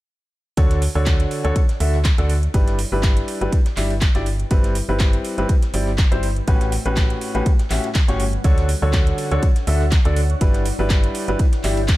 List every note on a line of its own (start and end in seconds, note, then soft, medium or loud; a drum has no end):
0.57 0.88 D2 medium
0.57 0.80 D3 medium
0.57 0.80 D4 medium
0.57 3.23 D4 medium
0.57 0.80 F#4 medium
0.57 0.80 A4 medium
0.57 0.80 C#5 loud
0.57 kick loud
0.57 closed hi-hat medium
0.57 ride medium
0.71 snare soft
0.71 closed hi-hat medium
0.82 3.24 C#5 medium
0.82 open hi-hat loud
0.82 open hi-hat medium
0.88 2.54 F#5 medium
0.95 1.25 D2 loud
0.95 1.41 D3 medium
0.95 1.41 D4 medium
0.95 1.41 F#4 medium
0.95 1.41 A4 medium
0.95 1.41 C#5 medium
1.06 kick loud
1.06 snare loud
1.06 clap loud
1.06 closed hi-hat medium
1.06 ride medium
1.20 closed hi-hat soft
1.31 open hi-hat medium
1.31 ride medium
1.44 1.52 D2 medium
1.44 1.58 D3 medium
1.44 1.58 D4 medium
1.44 1.58 F#4 medium
1.44 1.58 A4 medium
1.44 1.58 C#5 medium
1.44 closed hi-hat soft
1.56 kick loud
1.56 closed hi-hat medium
1.56 ride medium
1.69 snare soft
1.69 closed hi-hat medium
1.80 2.11 D2 loud
1.80 1.95 D3 medium
1.80 1.95 D4 medium
1.80 1.95 F#4 medium
1.80 1.95 A4 medium
1.80 1.95 E5 medium
1.80 open hi-hat loud
1.80 ride medium
1.94 snare soft
2.05 kick loud
2.05 snare loud
2.05 clap loud
2.05 closed hi-hat medium
2.05 ride medium
2.18 2.48 D2 loud
2.18 2.31 D3 medium
2.18 2.31 D4 medium
2.18 2.32 F#4 medium
2.18 2.32 A4 medium
2.18 2.32 D5 loud
2.18 closed hi-hat soft
2.29 open hi-hat medium
2.29 ride medium
2.43 closed hi-hat soft
2.54 2.85 G1 medium
2.54 2.77 G3 medium
2.54 2.77 D4 medium
2.54 2.77 E4 medium
2.54 5.16 E4 medium
2.54 2.77 G4 medium
2.54 2.77 B4 medium
2.54 kick loud
2.54 closed hi-hat medium
2.54 ride medium
2.67 snare soft
2.67 closed hi-hat soft
2.79 open hi-hat loud
2.79 ride medium
2.87 9.19 B4 medium
2.92 3.22 G1 loud
2.92 3.38 G3 medium
2.92 3.38 D4 medium
2.92 3.38 E4 medium
2.92 3.38 G4 medium
2.92 3.38 B4 medium
3.03 kick loud
3.03 snare loud
3.03 clap loud
3.03 closed hi-hat medium
3.03 ride medium
3.17 closed hi-hat soft
3.28 5.16 G5 medium
3.28 open hi-hat medium
3.28 ride medium
3.41 3.49 G1 medium
3.41 3.55 G3 medium
3.41 3.55 D4 medium
3.41 3.55 E4 medium
3.41 3.54 G4 medium
3.41 3.55 B4 medium
3.41 closed hi-hat soft
3.52 kick loud
3.52 closed hi-hat medium
3.52 ride medium
3.66 snare medium
3.66 closed hi-hat medium
3.77 4.07 G1 medium
3.77 3.92 G3 medium
3.77 3.92 D4 medium
3.77 3.92 E4 medium
3.77 3.92 G4 medium
3.77 3.92 E5 medium
3.77 clap medium
3.77 open hi-hat loud
3.77 ride medium
3.90 ride soft
4.01 kick loud
4.01 snare loud
4.01 clap loud
4.01 closed hi-hat medium
4.01 ride medium
4.15 4.45 G1 loud
4.15 4.25 D4 medium
4.15 4.25 E4 medium
4.15 4.25 G4 medium
4.15 4.25 D5 loud
4.15 snare soft
4.15 closed hi-hat soft
4.26 6.48 C4 medium
4.26 open hi-hat medium
4.26 ride medium
4.40 closed hi-hat soft
4.51 4.81 G1 loud
4.51 4.74 G3 medium
4.51 4.74 C4 medium
4.51 4.74 E4 medium
4.51 4.74 G4 medium
4.51 4.74 B4 loud
4.51 kick loud
4.51 closed hi-hat medium
4.51 ride medium
4.64 snare soft
4.64 closed hi-hat soft
4.75 open hi-hat loud
4.75 open hi-hat medium
4.89 5.18 G1 loud
4.89 5.35 G3 medium
4.89 5.35 C4 medium
4.89 5.35 E4 medium
4.89 5.35 G4 medium
4.89 5.35 B4 medium
5.00 7.27 E5 medium
5.00 kick loud
5.00 snare loud
5.00 clap loud
5.00 closed hi-hat medium
5.00 ride medium
5.13 closed hi-hat soft
5.25 open hi-hat medium
5.25 ride medium
5.38 5.45 G1 medium
5.38 5.51 G3 medium
5.38 5.51 C4 medium
5.38 5.51 E4 medium
5.38 5.51 G4 medium
5.38 5.51 B4 loud
5.38 closed hi-hat soft
5.49 kick loud
5.49 closed hi-hat medium
5.49 ride medium
5.62 snare soft
5.62 closed hi-hat medium
5.74 6.04 G1 loud
5.74 5.89 G3 medium
5.74 5.89 C4 medium
5.74 5.89 E4 medium
5.74 5.89 G4 medium
5.74 5.89 D5 medium
5.74 open hi-hat loud
5.74 ride medium
5.87 snare soft
5.98 kick loud
5.98 snare loud
5.98 clap loud
5.98 closed hi-hat medium
5.98 ride medium
6.12 6.41 G1 loud
6.12 6.25 G3 medium
6.12 6.25 C4 medium
6.12 6.25 E4 medium
6.12 6.25 G4 medium
6.12 6.25 C5 loud
6.12 closed hi-hat soft
6.23 open hi-hat medium
6.23 ride medium
6.36 closed hi-hat soft
6.47 6.78 A1 loud
6.47 6.70 A2 medium
6.47 8.44 C#4 medium
6.47 6.70 C#4 medium
6.47 6.70 F#4 medium
6.47 6.70 G4 medium
6.47 6.70 B4 loud
6.47 kick loud
6.47 closed hi-hat medium
6.47 ride medium
6.61 snare soft
6.61 closed hi-hat soft
6.70 8.44 G3 medium
6.70 open hi-hat loud
6.70 ride medium
6.78 10.41 F#5 medium
6.85 7.15 A1 loud
6.85 7.32 A2 medium
6.85 7.32 C#4 medium
6.85 7.32 F#4 medium
6.85 7.32 G4 medium
6.85 7.31 B4 loud
6.85 closed hi-hat soft
6.96 kick loud
6.96 snare loud
6.96 clap loud
6.96 closed hi-hat medium
6.96 ride medium
7.10 closed hi-hat soft
7.21 open hi-hat medium
7.21 ride medium
7.35 7.42 A1 medium
7.35 7.48 A2 medium
7.35 7.48 C#4 medium
7.35 7.48 F#4 medium
7.35 7.48 G4 medium
7.35 7.48 B4 loud
7.35 closed hi-hat soft
7.46 kick loud
7.46 closed hi-hat medium
7.46 ride medium
7.59 snare medium
7.59 closed hi-hat soft
7.70 7.79 A1 medium
7.70 7.86 A2 medium
7.70 7.86 C#4 medium
7.70 7.86 F#4 medium
7.70 7.86 G4 medium
7.70 7.86 E5 medium
7.70 clap medium
7.70 open hi-hat loud
7.70 ride medium
7.84 closed hi-hat soft
7.84 ride soft
7.95 kick loud
7.95 snare loud
7.95 clap loud
7.95 closed hi-hat medium
7.95 ride medium
8.08 8.38 G1 loud
8.08 8.22 A2 medium
8.08 8.22 C#4 medium
8.08 8.22 F#4 medium
8.08 8.22 G4 medium
8.08 8.22 C#5 loud
8.08 snare soft
8.08 closed hi-hat soft
8.20 open hi-hat medium
8.20 ride medium
8.33 closed hi-hat soft
8.44 8.75 D2 medium
8.44 8.67 D3 medium
8.44 11.10 D4 medium
8.44 8.67 D4 medium
8.44 8.67 F#4 medium
8.44 8.67 A4 medium
8.44 8.67 C#5 loud
8.44 kick loud
8.44 closed hi-hat medium
8.44 ride medium
8.58 11.10 C#5 medium
8.58 snare soft
8.58 closed hi-hat soft
8.69 open hi-hat loud
8.69 open hi-hat medium
8.82 9.12 D2 loud
8.82 9.28 D3 medium
8.82 9.28 D4 medium
8.82 9.28 F#4 medium
8.82 9.28 A4 medium
8.82 9.28 C#5 medium
8.93 kick loud
8.93 snare loud
8.93 clap loud
8.93 closed hi-hat medium
8.93 ride medium
9.07 closed hi-hat soft
9.18 open hi-hat medium
9.18 ride medium
9.31 9.39 D2 medium
9.31 9.45 D3 medium
9.31 9.45 D4 medium
9.31 9.45 F#4 medium
9.31 9.45 A4 medium
9.31 9.45 C#5 medium
9.31 closed hi-hat soft
9.43 kick loud
9.43 closed hi-hat medium
9.43 ride medium
9.56 snare soft
9.56 closed hi-hat soft
9.67 9.98 D2 loud
9.67 9.82 D3 medium
9.67 9.82 D4 medium
9.67 9.82 F#4 medium
9.67 9.82 A4 medium
9.67 9.82 E5 medium
9.67 open hi-hat loud
9.67 ride medium
9.81 snare soft
9.91 kick loud
9.91 snare loud
9.91 clap loud
9.91 closed hi-hat medium
9.91 ride medium
10.05 10.35 D2 loud
10.05 10.18 D3 medium
10.05 10.18 D4 medium
10.05 10.19 F#4 medium
10.05 10.18 A4 medium
10.05 10.18 D5 loud
10.05 closed hi-hat soft
10.16 open hi-hat medium
10.16 ride medium
10.30 closed hi-hat soft
10.41 10.71 G1 loud
10.41 10.64 G3 medium
10.41 10.64 D4 medium
10.41 10.64 E4 medium
10.41 11.97 E4 medium
10.41 10.64 G4 medium
10.41 10.64 B4 loud
10.41 kick loud
10.41 closed hi-hat medium
10.41 ride medium
10.48 11.97 B4 medium
10.54 snare soft
10.54 closed hi-hat soft
10.65 open hi-hat loud
10.65 ride medium
10.79 11.08 G1 loud
10.79 11.25 G3 medium
10.79 11.25 D4 medium
10.79 11.25 E4 medium
10.79 11.25 G4 medium
10.79 11.25 B4 loud
10.79 11.97 G5 medium
10.90 kick loud
10.90 snare loud
10.90 clap loud
10.90 closed hi-hat medium
10.90 ride medium
11.04 closed hi-hat soft
11.15 open hi-hat medium
11.15 ride medium
11.28 11.35 G1 medium
11.28 11.41 G3 medium
11.28 11.41 D4 medium
11.28 11.41 E4 medium
11.28 11.41 G4 medium
11.28 11.41 B4 loud
11.28 closed hi-hat soft
11.39 kick loud
11.39 closed hi-hat medium
11.39 ride medium
11.53 snare medium
11.53 closed hi-hat soft
11.64 11.94 G1 loud
11.64 11.79 G3 medium
11.64 11.79 D4 medium
11.64 11.79 E4 medium
11.64 11.79 G4 medium
11.64 11.79 E5 medium
11.64 clap medium
11.64 open hi-hat loud
11.64 ride medium
11.77 ride soft
11.88 kick loud
11.88 snare loud
11.88 clap loud
11.88 closed hi-hat medium
11.88 ride medium